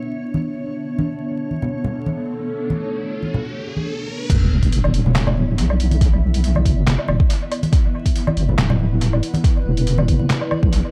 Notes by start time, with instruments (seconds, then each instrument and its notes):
Already playing: ambient pad B3 D4 E5, synth texture C#5
0.34 high conga
0.87 ambient pad A4, riser
0.99 high conga
1.51 high conga
1.62 low conga
1.84 low conga
2.06 high conga
2.70 high conga
3.22 high conga
3.34 low conga
3.76 high conga
4.30 wobble bass E1, ambient pad B3 E4 E5, kick, closed hi-hat, crash, sub drop
4.63 kick, closed hi-hat
4.73 closed hi-hat
4.84 high conga, low woodblock
4.94 closed hi-hat
5.06 low conga
5.15 wobble bass E1, snare, clap, closed hi-hat
5.27 low conga, low woodblock
5.37 wobble bass D1, high conga
5.58 wobble bass B1, closed hi-hat
5.70 low woodblock
5.80 closed hi-hat
5.91 closed hi-hat, high conga
6.01 kick, closed hi-hat
6.34 closed hi-hat
6.44 closed hi-hat
6.55 high conga, low woodblock
6.65 wobble bass G1, kick, closed hi-hat
6.87 wobble bass F#1, snare, clap, closed hi-hat
6.99 low woodblock
7.08 wobble bass E1, high conga, low woodblock
7.20 kick
7.30 closed hi-hat
7.51 closed hi-hat, low woodblock
7.63 closed hi-hat, high conga
7.73 ambient pad B4, kick, closed hi-hat
8.06 kick, closed hi-hat
8.16 closed hi-hat
8.27 high conga, low woodblock
8.37 wobble bass G1, closed hi-hat
8.49 low conga
8.58 wobble bass D1, snare, clap, closed hi-hat
8.70 low conga, low woodblock
8.80 high conga
9.01 closed hi-hat
9.13 low woodblock
9.23 closed hi-hat
9.34 closed hi-hat, high conga
9.44 kick, closed hi-hat
9.65 wobble bass E1
9.77 closed hi-hat
9.87 closed hi-hat
9.98 high conga, low woodblock
10.08 wobble bass G1, kick, closed hi-hat
10.19 low conga
10.30 snare, clap, closed hi-hat
10.41 low woodblock
10.51 high conga, low woodblock
10.63 wobble bass B1, kick
10.73 closed hi-hat